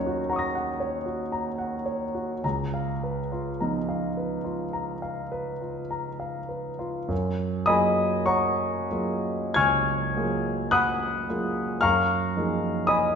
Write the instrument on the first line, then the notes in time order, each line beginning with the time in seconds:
grand piano
Already playing: D#2 F#3 C#4 D#4 F#4 C#5 F#5 A#5
0.06 F#4
0.29 F#5 A#5 C#6
0.36 D#6 A#6
0.55 F#5
0.80 C#5
1.06 F#4
1.32 A#5
1.58 F#5
1.86 C#5
2.15 F#4
2.44 C#2 A#5
2.74 F5
3.03 B4
3.32 F4
3.61 F3 B3 D#4 A#5
3.89 F5
4.17 B4
4.44 F4
4.73 A#5
5.02 F5
5.32 B4
5.61 F4
5.91 A#5
6.20 F5
6.49 B4
6.79 F4
7.08 F#2
7.66 F#3 A#3 F4 G#4 D#5 G#5 B5 D#6
8.26 C#5 F#5 A#5 C#6
8.90 F#3 A#3 F4 G#4
9.54 C#2 G#5 C#6 F6 G#6
10.16 F#3 A#3 F4 G#4
10.71 F#5 B5 D#6 F#6
11.29 F#3 A#3 F4 G#4
11.81 F#2 F5 A#5 C#6 F6
12.36 F3 A#3 D#4 G#4
12.87 D#5 G#5 B5 D#6